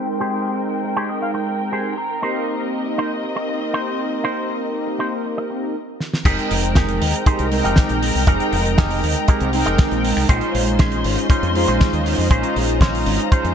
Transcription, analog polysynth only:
Already playing: G#3 C4 D#4 A#4 G5
2.22 A#3 C4 D#4 G4 A#4
6.25 G#3 C4 D#4 A#4 G5
7.27 G#3 C4 D#4 G4 A#4
7.51 G#3 C4 D#4 A#4 G5
8.27 G#3 C4
9.28 G#3 C4 D#4 G4 A#4
9.53 G#3 C4 D#4 A#4 G5
10.29 C#4 D#4 F4 C5
11.30 G#3 C#4 D#4 F4 C5
11.54 G#3 C#4 D#4 F4 C5
12.30 G#3 C#4 D#4 F4 C5
13.32 G#3 C#4 D#4 F4 C5

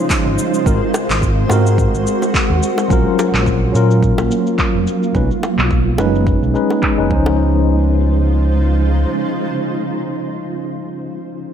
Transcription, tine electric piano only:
Already playing: F3 C#4 D#4 C5
0.65 G#3 C4 F#4 A#4
1.48 G#3 C4 F#4
1.53 A#4
2.88 F#3 C#4 F4
2.93 A#4
3.72 F#3 C#4 F4
3.76 A#4
5.14 G#3 C#4 D#4 B4
5.98 G#3 C#4 D#4 B4
6.54 G#3 C#4 D#4 B4
6.98 G#3 C#4 D#4 B4
7.08 F3 C#4
7.12 D#4 C5

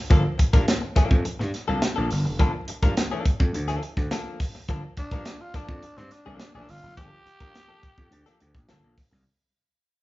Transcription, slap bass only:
0.11 G1
0.39 muted slap bass stroke
0.54 G2
0.96 muted slap bass stroke
1.11 F2
1.26 muted slap bass stroke
1.40 G2
1.69 C2
1.98 A#1
2.12 G1
2.26 F1
2.39 G1
2.69 muted slap bass stroke
2.82 G2
3.26 muted slap bass stroke
3.40 F2
3.55 D2
3.97 D2
4.69 G1
4.97 muted slap bass stroke
5.12 G2
5.54 muted slap bass stroke
5.69 F2
5.83 muted slap bass stroke
5.97 G2
6.26 C2
6.54 A#1
6.69 G1
6.83 F1
6.98 G1
7.26 muted slap bass stroke
7.41 G2
7.83 muted slap bass stroke
7.98 F2
8.12 D2
8.41 D2
8.55 A#1
8.69 G1
8.83 A#1
9.12 C2

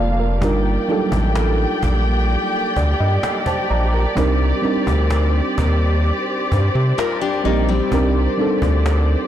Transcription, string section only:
Already playing: A#3 F4 A4 F5
0.43 G4 D5 G5
4.17 C5

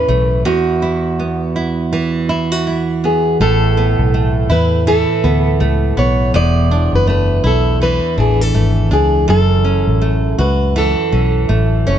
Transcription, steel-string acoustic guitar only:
Already playing: B4
0.46 F#4
3.05 G#4
3.42 A4
4.52 B4
4.88 A4
5.99 C#5
6.36 D5
6.96 B4
7.10 B4
7.47 A4
7.83 B4
8.20 G#4
8.41 A4
8.93 G#4
9.30 A4
10.40 B4
10.78 A4
11.88 C#5

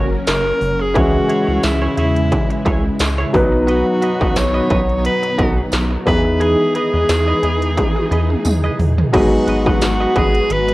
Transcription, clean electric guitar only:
Already playing: F#4 A#4 C#5
0.11 muted clean electric guitar stroke
0.27 muted clean electric guitar stroke
0.46 muted clean electric guitar stroke
0.80 muted clean electric guitar stroke
0.94 E4 G#4 C#5
1.14 muted clean electric guitar stroke
1.29 E4 G#4 C#5
1.47 E4 G#4 C#5
1.63 muted clean electric guitar stroke
1.82 E4 G#4 C#5
1.97 E4 G#4 C#5
2.16 muted clean electric guitar stroke
2.32 muted clean electric guitar stroke
2.50 muted clean electric guitar stroke
2.65 E4 G#4 C#5
2.84 muted clean electric guitar stroke
2.99 muted clean electric guitar stroke
3.18 E4 G#4 C#5
3.52 muted clean electric guitar stroke
3.67 F#4 B4 D#5
3.86 muted clean electric guitar stroke
4.01 F#4 B4 D#5
4.20 F#4 B4 D#5
4.35 muted clean electric guitar stroke
4.54 F#4 B4 D#5
4.70 F#4 B4 D#5
4.89 muted clean electric guitar stroke
5.04 muted clean electric guitar stroke
5.23 muted clean electric guitar stroke
5.38 F#4 B4 D#5
5.57 muted clean electric guitar stroke
5.72 muted clean electric guitar stroke
5.91 muted clean electric guitar stroke
6.25 muted clean electric guitar stroke
6.40 G#4 B4 D#5
6.75 G#4 B4 D#5
6.94 G#4 B4 D#5
7.09 muted clean electric guitar stroke
7.28 G#4 B4 D#5
7.43 G#4 B4 D#5
7.62 muted clean electric guitar stroke
7.77 muted clean electric guitar stroke
7.96 muted clean electric guitar stroke
8.11 G#4 B4 D#5
8.30 muted clean electric guitar stroke
8.45 muted clean electric guitar stroke
8.64 G#4 B4 D#5
8.80 muted clean electric guitar stroke
8.98 muted clean electric guitar stroke
9.13 F#4 B4 D#5
9.32 muted clean electric guitar stroke
9.47 F#4 B4 D#5
9.66 F#4 B4 D#5
9.81 muted clean electric guitar stroke
10.00 F#4 B4 D#5
10.16 F#4 B4 D#5
10.35 muted clean electric guitar stroke
10.50 muted clean electric guitar stroke
10.68 muted clean electric guitar stroke

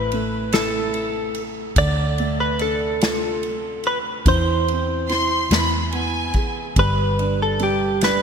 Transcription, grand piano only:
Already playing: A3 E4
0.13 A3
0.54 E4
1.77 D3
2.20 A3
2.60 D4
3.01 F4
4.27 E3
4.68 C4
5.10 E3
5.51 E3
5.93 B3
6.35 G#4
6.77 G3
7.19 D4
7.60 G3
8.03 D4

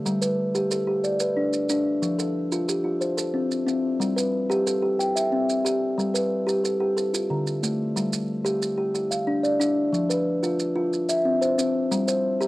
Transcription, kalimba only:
0.06 G3
0.21 B4
0.55 G4
0.71 A4
0.87 G4
1.04 D5
1.21 B4
1.37 D4
1.70 D4
2.02 F3
2.19 A4
2.52 F4
2.68 G4
2.84 F4
3.01 C5
3.17 A4
3.34 C4
3.67 C4
4.00 G3
4.16 B4
4.50 G4
4.67 A4
4.82 G4
4.99 G5
5.16 E5
5.32 C4
5.65 G4
5.98 G3
6.14 B4
6.47 G4
6.64 A4
6.80 G4
6.97 A4
7.13 F4
7.30 D3
7.63 A3
7.96 G3
8.45 G4
8.78 G4
8.95 G4
9.11 F5
9.27 D4
9.43 D5
9.60 D4
9.93 F3
10.10 B4
10.43 F4
10.76 F4
11.09 E5
11.25 C4
11.41 C5
11.58 C4
11.91 G3
12.08 C5
12.41 G4

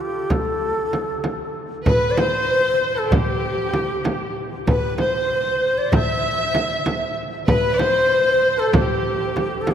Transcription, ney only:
0.01 G4
0.31 A4
1.87 B4
2.11 D5
2.19 C5
2.98 A4
3.15 G4
4.69 B4
4.99 C5
5.78 D5
5.93 E5
7.48 B4
7.79 C5
8.59 A4
8.75 G4
9.61 A4
9.71 G4

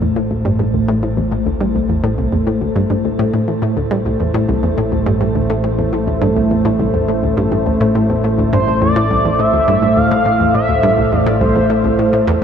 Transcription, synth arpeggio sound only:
0.02 E2
0.16 A2
0.31 D2
0.45 G2
0.59 G2
0.74 D2
0.88 A2
1.03 A2
1.17 E2
1.32 A2
1.46 D2
1.61 G2
1.75 C2
1.89 E2
2.04 A2
2.18 C2
2.32 E2
2.47 A2
2.61 D2
2.76 G2
2.90 G2
3.05 D2
3.19 A2
3.34 A2
3.48 E2
3.62 A2
3.77 D2
3.91 G2
4.05 C2
4.20 E2
4.34 A2
4.49 C2
4.63 E2
4.78 A2
4.92 D2
5.06 G2
5.21 G2
5.35 D2
5.50 A2
5.64 A2
5.78 E2
5.93 A2
6.07 D2
6.22 G2
6.36 C2
6.51 E2
6.65 A2
6.79 C2
6.94 E2
7.08 A2
7.23 D2
7.37 G2
7.52 G2
7.66 D2
7.81 A2
7.95 A2
8.10 E2
8.24 A2
8.38 D2
8.53 G2
8.67 C2
8.82 E2
8.96 A2
9.11 C2
9.25 E2
9.39 A2
9.54 D2
9.68 G2
9.82 G2
9.97 D2
10.11 A2
10.26 A2
10.40 E2
10.55 A2
10.69 D2
10.83 G2
10.98 C2
11.12 E2
11.27 A2
11.41 C2
11.56 E2
11.70 A2
11.84 C2
11.99 A2
12.13 A2
12.27 E2

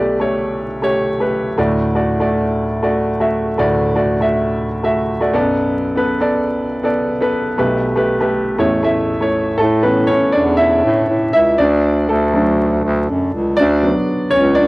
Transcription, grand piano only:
Already playing: B1 B2 A3 G4 B4 D5
0.20 A3 G4 C#5
0.82 A3 G4 C#5
1.20 A3 G4 B4
1.58 D2 A2 A3 F#4 D5
1.95 A3 F#4 D5
2.20 A3 F#4 D5
2.82 A3 F#4 D5
3.20 A3 F#4 E5
3.58 D2 A2 A3 F#4 D5
3.95 A3 F#4 D5
4.20 A3 F#4 E5
4.83 A3 F#4 E5
5.21 A3 F#4 D5
5.33 B1 F#2 B3 A4 D5
5.96 B3 A4 B4
6.20 B3 A4 D5
6.83 B3 A4 D5
7.21 B3 A4 B4
7.58 B1 B2 A3 G4 B4
7.96 A3 G4 B4
8.21 A3 G4 B4
8.58 A1 E2 A3 E4 C#5
8.83 A3 E4 E5
9.21 A3 E4 C#5
9.58 A3 A4
9.83 E3 A3 B3 C#4 B4
10.07 C#4 C#5
10.32 D4 D5
10.57 E4 E5
11.33 E4 E5
11.58 D4 D5
12.09 A3 A4
12.33 F#3 A3 D4
13.57 D4 D5
13.83 F#3 B3 D4
14.30 C#4 C#5
14.55 D4 D5

